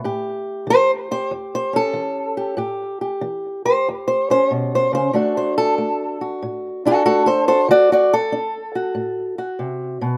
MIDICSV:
0, 0, Header, 1, 2, 480
1, 0, Start_track
1, 0, Tempo, 637620
1, 32, Time_signature, 4, 2, 24, 8
1, 7659, End_track
2, 0, Start_track
2, 0, Title_t, "Steel-string acoustic guitar"
2, 0, Program_c, 0, 25
2, 0, Note_on_c, 0, 57, 42
2, 33, Note_on_c, 0, 45, 67
2, 38, Note_on_c, 0, 67, 54
2, 480, Note_off_c, 0, 45, 0
2, 503, Note_on_c, 0, 52, 63
2, 529, Note_on_c, 0, 72, 125
2, 681, Note_off_c, 0, 72, 0
2, 834, Note_off_c, 0, 67, 0
2, 837, Note_on_c, 0, 67, 44
2, 840, Note_on_c, 0, 72, 103
2, 955, Note_off_c, 0, 52, 0
2, 986, Note_on_c, 0, 40, 65
2, 996, Note_off_c, 0, 72, 0
2, 1166, Note_on_c, 0, 72, 95
2, 1300, Note_off_c, 0, 57, 0
2, 1303, Note_on_c, 0, 61, 44
2, 1320, Note_off_c, 0, 72, 0
2, 1325, Note_on_c, 0, 69, 104
2, 1437, Note_off_c, 0, 40, 0
2, 1456, Note_on_c, 0, 52, 59
2, 1776, Note_off_c, 0, 67, 0
2, 1785, Note_on_c, 0, 67, 50
2, 1912, Note_off_c, 0, 52, 0
2, 1931, Note_off_c, 0, 61, 0
2, 1932, Note_off_c, 0, 67, 0
2, 1933, Note_on_c, 0, 45, 75
2, 1941, Note_on_c, 0, 67, 52
2, 2258, Note_off_c, 0, 67, 0
2, 2267, Note_on_c, 0, 67, 52
2, 2280, Note_off_c, 0, 69, 0
2, 2391, Note_off_c, 0, 45, 0
2, 2419, Note_on_c, 0, 52, 65
2, 2742, Note_off_c, 0, 67, 0
2, 2750, Note_on_c, 0, 67, 42
2, 2752, Note_on_c, 0, 72, 111
2, 2874, Note_off_c, 0, 52, 0
2, 2912, Note_off_c, 0, 72, 0
2, 2924, Note_on_c, 0, 40, 64
2, 3068, Note_on_c, 0, 72, 85
2, 3231, Note_off_c, 0, 72, 0
2, 3238, Note_on_c, 0, 61, 41
2, 3246, Note_on_c, 0, 72, 110
2, 3366, Note_off_c, 0, 40, 0
2, 3392, Note_on_c, 0, 47, 61
2, 3400, Note_off_c, 0, 72, 0
2, 3577, Note_on_c, 0, 72, 93
2, 3705, Note_off_c, 0, 47, 0
2, 3708, Note_on_c, 0, 49, 61
2, 3716, Note_off_c, 0, 72, 0
2, 3725, Note_on_c, 0, 72, 83
2, 3855, Note_off_c, 0, 67, 0
2, 3859, Note_off_c, 0, 61, 0
2, 3861, Note_off_c, 0, 49, 0
2, 3864, Note_on_c, 0, 50, 77
2, 3867, Note_on_c, 0, 57, 47
2, 3871, Note_on_c, 0, 62, 47
2, 3878, Note_on_c, 0, 66, 46
2, 3879, Note_off_c, 0, 72, 0
2, 3885, Note_on_c, 0, 69, 53
2, 4041, Note_off_c, 0, 69, 0
2, 4044, Note_on_c, 0, 72, 76
2, 4195, Note_off_c, 0, 72, 0
2, 4198, Note_on_c, 0, 69, 100
2, 4316, Note_off_c, 0, 50, 0
2, 4348, Note_off_c, 0, 57, 0
2, 4351, Note_on_c, 0, 57, 61
2, 4673, Note_off_c, 0, 66, 0
2, 4676, Note_off_c, 0, 69, 0
2, 4676, Note_on_c, 0, 66, 44
2, 4799, Note_off_c, 0, 57, 0
2, 4837, Note_on_c, 0, 45, 71
2, 5146, Note_off_c, 0, 62, 0
2, 5157, Note_off_c, 0, 66, 0
2, 5160, Note_on_c, 0, 62, 43
2, 5168, Note_on_c, 0, 66, 91
2, 5173, Note_on_c, 0, 69, 101
2, 5282, Note_off_c, 0, 45, 0
2, 5300, Note_off_c, 0, 66, 0
2, 5304, Note_off_c, 0, 69, 0
2, 5310, Note_on_c, 0, 57, 69
2, 5312, Note_on_c, 0, 66, 88
2, 5313, Note_on_c, 0, 69, 97
2, 5457, Note_off_c, 0, 69, 0
2, 5466, Note_on_c, 0, 69, 85
2, 5471, Note_off_c, 0, 66, 0
2, 5475, Note_on_c, 0, 72, 97
2, 5570, Note_off_c, 0, 69, 0
2, 5621, Note_off_c, 0, 72, 0
2, 5628, Note_on_c, 0, 66, 51
2, 5631, Note_on_c, 0, 72, 93
2, 5633, Note_on_c, 0, 69, 80
2, 5708, Note_off_c, 0, 69, 0
2, 5759, Note_off_c, 0, 57, 0
2, 5774, Note_off_c, 0, 66, 0
2, 5779, Note_off_c, 0, 62, 0
2, 5785, Note_on_c, 0, 50, 78
2, 5791, Note_off_c, 0, 72, 0
2, 5802, Note_on_c, 0, 66, 85
2, 5805, Note_on_c, 0, 74, 105
2, 5954, Note_off_c, 0, 66, 0
2, 5959, Note_off_c, 0, 74, 0
2, 5963, Note_on_c, 0, 66, 71
2, 5972, Note_on_c, 0, 74, 91
2, 6117, Note_off_c, 0, 66, 0
2, 6122, Note_off_c, 0, 74, 0
2, 6124, Note_on_c, 0, 69, 101
2, 6235, Note_off_c, 0, 50, 0
2, 6265, Note_on_c, 0, 62, 57
2, 6590, Note_on_c, 0, 66, 49
2, 6715, Note_off_c, 0, 62, 0
2, 6735, Note_on_c, 0, 45, 60
2, 7054, Note_off_c, 0, 66, 0
2, 7063, Note_on_c, 0, 66, 46
2, 7076, Note_off_c, 0, 69, 0
2, 7189, Note_off_c, 0, 45, 0
2, 7219, Note_on_c, 0, 48, 62
2, 7535, Note_off_c, 0, 48, 0
2, 7538, Note_on_c, 0, 47, 65
2, 7659, Note_off_c, 0, 47, 0
2, 7659, Note_off_c, 0, 66, 0
2, 7659, End_track
0, 0, End_of_file